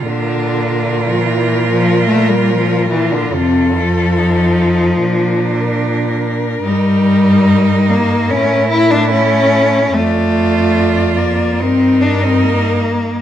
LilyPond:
<<
  \new Staff \with { instrumentName = "Cello" } { \time 4/4 \key bes \lydian \tempo 4 = 73 bes'1 | a'2 bes'2~ | bes'2. a'4 | d''2 bes'2 | }
  \new Staff \with { instrumentName = "Cello" } { \time 4/4 \key bes \lydian f'1~ | f'4 ees'4 d'2 | ees'2 e'2 | f'2 ees'2 | }
  \new Staff \with { instrumentName = "Cello" } { \time 4/4 \key bes \lydian d4~ d16 f16 e8 f8 a16 g16 f8 e16 d16 | c8 f2. r8 | g4. bes8 cis'8 e'16 d'16 cis'4 | a4. bes8 c'8 d'16 c'16 bes4 | }
  \new Staff \with { instrumentName = "Cello" } { \clef bass \time 4/4 \key bes \lydian bes,1 | f,2 bes,2 | g,2 a,2 | f,2 g,2 | }
>>